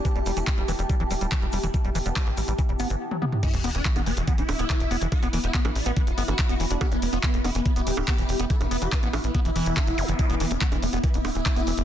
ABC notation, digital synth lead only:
X:1
M:4/4
L:1/16
Q:1/4=142
K:Em
V:1 name="Digital synth lead"
z16 | z16 | E E, E, D E, E, B, E, E, E6 z | F B, B, E B, B, D B, B, F6 z |
G B, B, F B, B, E B, B, G6 z | A B, B, G B, B, F B, B, E6 z | E E, E, D E, E, B, E, E, E6 z |]